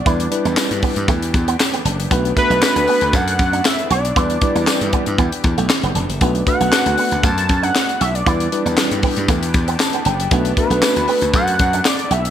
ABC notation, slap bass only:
X:1
M:4/4
L:1/16
Q:1/4=117
K:Em
V:1 name="Slap bass" clef=bass
E,,2 z E,, z G,, z G,, E,,2 E,,2 z2 F,,,2 | B,,,2 z B,,, z D,, z D,, F,,2 F,,2 z2 B,,,2 | E,,2 z E,, z G,, z G,, E,, z E,, B,,, z F,,, E,,, F,,, | B,,,2 z B,,, z D,, z D,, F,,2 F,,2 z2 B,,,2 |
E,,2 z E,, z G,, z G,, E,,2 E,,2 z2 F,,,2 | B,,,2 z B,,, z D,, z D,, F,,2 F,,2 z2 B,,,2 |]